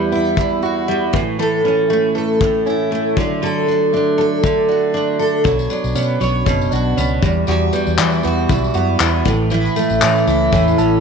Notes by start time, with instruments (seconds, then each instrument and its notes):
Already playing: steel-string acoustic guitar E2 G3 B3 E4, clean electric guitar G3 B3 E4
0.12 clean electric guitar B3, steel-string acoustic guitar E4
0.37 steel-string acoustic guitar E2, clean electric guitar E4, kick
0.63 steel-string acoustic guitar F#4, clean electric guitar F#4
0.88 steel-string acoustic guitar G3, clean electric guitar E4
1.13 steel-string acoustic guitar A2, clean electric guitar E3, kick
1.39 steel-string acoustic guitar A2 A4, clean electric guitar E3
1.64 clean electric guitar E3, steel-string acoustic guitar C#4
1.90 clean electric guitar A3, steel-string acoustic guitar A3
2.15 clean electric guitar E3, steel-string acoustic guitar A4
2.41 steel-string acoustic guitar A2, clean electric guitar A3, kick
2.66 clean electric guitar C#4, steel-string acoustic guitar E4
2.91 clean electric guitar A3, steel-string acoustic guitar A3
3.17 steel-string acoustic guitar D3, clean electric guitar F#3, kick
3.42 steel-string acoustic guitar D3 A4, clean electric guitar F#3
3.68 clean electric guitar F#3, steel-string acoustic guitar D4
3.93 clean electric guitar A3, steel-string acoustic guitar D4
4.18 clean electric guitar F#3, steel-string acoustic guitar A4
4.43 steel-string acoustic guitar D3, clean electric guitar A3, kick
4.69 clean electric guitar D4, steel-string acoustic guitar F#4
4.94 clean electric guitar A3, steel-string acoustic guitar D4
5.19 clean electric guitar D4, steel-string acoustic guitar A4
5.44 fingered electric bass B1, steel-string acoustic guitar B2 C#5, clean electric guitar F#3, kick, tambourine
5.59 tambourine
5.70 clean electric guitar F#3, steel-string acoustic guitar D4, tambourine
5.84 fingered electric bass B1, tambourine
5.95 fingered electric bass B2, steel-string acoustic guitar B3, clean electric guitar C#4, tambourine
6.21 fingered electric bass B1, clean electric guitar F#3, steel-string acoustic guitar C#5, tambourine
6.46 fingered electric bass F#1, steel-string acoustic guitar B2, clean electric guitar C#4, kick, tambourine
6.61 tambourine
6.71 fingered electric bass B1, clean electric guitar D4, steel-string acoustic guitar F#4, tambourine
6.97 fingered electric bass C#2, steel-string acoustic guitar B3, clean electric guitar C#4, tambourine
7.22 fingered electric bass E2, steel-string acoustic guitar E2, clean electric guitar G3, kick, tambourine
7.47 steel-string acoustic guitar E2 F#4, fingered electric bass E2, clean electric guitar G3, tambourine
7.73 steel-string acoustic guitar G3, clean electric guitar B3, tambourine
7.87 fingered electric bass E2, tambourine
7.98 fingered electric bass E3, steel-string acoustic guitar E3, clean electric guitar E4, clap, tambourine
8.12 tambourine
8.23 fingered electric bass E2, clean electric guitar B3, steel-string acoustic guitar F#4, tambourine
8.49 fingered electric bass B1, steel-string acoustic guitar E2, clean electric guitar E4, kick, tambourine
8.64 tambourine
8.74 fingered electric bass F#2, steel-string acoustic guitar B3, clean electric guitar F#4, tambourine
9.00 fingered electric bass E2, steel-string acoustic guitar E3, clean electric guitar E4, clap, tambourine
9.25 fingered electric bass A1, steel-string acoustic guitar A2, clean electric guitar E3, kick, tambourine
9.50 steel-string acoustic guitar A2 E4, clean electric guitar E3, tambourine
9.65 tambourine
9.76 clean electric guitar A3, steel-string acoustic guitar A3, tambourine
9.90 fingered electric bass A1, tambourine
10.01 fingered electric bass A2, steel-string acoustic guitar E3, clean electric guitar C#4, clap, tambourine
10.15 tambourine
10.27 fingered electric bass C#2, clean electric guitar A3, steel-string acoustic guitar E4, tambourine
10.52 fingered electric bass E2, steel-string acoustic guitar A2, clean electric guitar C#4, kick, tambourine
10.68 tambourine
10.78 fingered electric bass A1, steel-string acoustic guitar C#4, clean electric guitar A4, tambourine